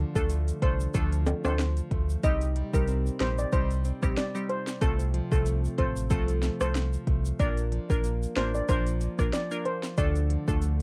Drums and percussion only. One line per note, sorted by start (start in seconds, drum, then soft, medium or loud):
0.16 kick medium
0.16 shaker medium
0.30 closed hi-hat medium
0.30 shaker medium
0.48 closed hi-hat medium
0.48 shaker medium
0.62 kick medium
0.62 closed hi-hat medium
0.80 shaker medium
0.94 kick medium
0.94 closed hi-hat medium
0.94 shaker medium
1.12 closed hi-hat medium
1.12 shaker medium
1.26 closed hi-hat medium
1.26 high timbale medium
1.26 shaker medium
1.45 cross-stick loud
1.45 high timbale medium
1.45 shaker medium
1.59 snare loud
1.59 closed hi-hat medium
1.59 shaker medium
1.77 closed hi-hat medium
1.77 shaker medium
1.91 kick medium
1.91 closed hi-hat medium
2.09 shaker medium
2.23 kick loud
2.23 closed hi-hat medium
2.23 shaker medium
2.41 closed hi-hat medium
2.41 shaker medium
2.56 closed hi-hat medium
2.74 kick medium
2.74 shaker medium
2.88 closed hi-hat medium
2.88 shaker medium
3.06 shaker medium
3.20 snare loud
3.20 closed hi-hat medium
3.38 shaker medium
3.53 kick loud
3.53 closed hi-hat medium
3.53 shaker medium
3.71 closed hi-hat medium
3.71 shaker medium
3.85 closed hi-hat medium
3.85 shaker medium
4.03 kick medium
4.03 cross-stick medium
4.03 shaker medium
4.17 snare loud
4.17 closed hi-hat medium
4.17 shaker medium
4.35 shaker medium
4.49 closed hi-hat medium
4.67 snare medium
4.67 shaker medium
4.81 kick loud
4.81 closed hi-hat medium
4.81 shaker medium
4.99 closed hi-hat medium
4.99 shaker medium
5.14 closed hi-hat medium
5.32 kick medium
5.32 shaker medium
5.46 closed hi-hat medium
5.46 shaker medium
5.65 shaker medium
5.78 kick medium
5.78 closed hi-hat medium
5.96 shaker medium
6.10 kick loud
6.10 closed hi-hat medium
6.10 shaker medium
6.28 closed hi-hat medium
6.28 shaker medium
6.43 snare medium
6.43 closed hi-hat medium
6.43 shaker medium
6.61 cross-stick loud
6.61 shaker medium
6.75 snare loud
6.75 closed hi-hat medium
6.75 shaker medium
6.93 shaker medium
7.07 kick medium
7.07 closed hi-hat medium
7.25 shaker medium
7.39 kick loud
7.39 closed hi-hat medium
7.39 shaker medium
7.57 closed hi-hat medium
7.57 shaker medium
7.72 closed hi-hat medium
7.90 kick loud
7.90 shaker medium
8.04 closed hi-hat medium
8.04 shaker medium
8.23 shaker medium
8.36 snare loud
8.36 closed hi-hat medium
8.54 shaker medium
8.69 kick loud
8.69 closed hi-hat medium
8.69 shaker medium
8.86 closed hi-hat medium
8.86 shaker medium
9.01 closed hi-hat medium
9.01 shaker medium
9.19 kick medium
9.19 cross-stick loud
9.19 shaker medium
9.33 snare loud
9.33 closed hi-hat medium
9.33 shaker medium
9.51 shaker medium
9.65 closed hi-hat medium
9.83 snare medium
9.83 shaker medium
9.98 kick loud
9.98 closed hi-hat medium
9.98 shaker medium
10.15 closed hi-hat medium
10.15 shaker medium
10.30 closed hi-hat medium
10.48 kick loud
10.48 shaker medium
10.62 closed hi-hat medium
10.62 shaker medium